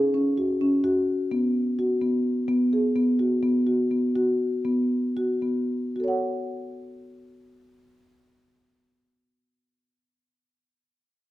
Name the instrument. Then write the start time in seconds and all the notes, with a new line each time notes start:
marimba
0.14 C#4
0.37 F#4
0.61 C#4
0.84 F#4
1.31 B3
1.79 F#4
2.02 B3
2.48 B3
2.73 G#4
2.96 B3
3.19 F#4
3.43 B3
3.67 F#4
3.91 B3
4.16 F#4
4.65 B3
5.17 F#4
5.42 B3
5.96 F#4
6.00 A4 C#5
6.08 F#5